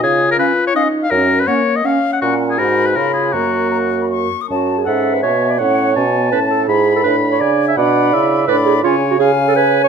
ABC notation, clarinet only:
X:1
M:3/4
L:1/16
Q:1/4=164
K:F#
V:1 name="Clarinet"
z4 C4 C4 | z4 C4 C4 | C4 D4 E4 | F8- F2 z2 |
[K:F#m] F3 G A3 B c3 d | c8 B2 A2 | G3 A B3 c d3 e | d8 B2 G2 |
^E3 F G3 A B3 c |]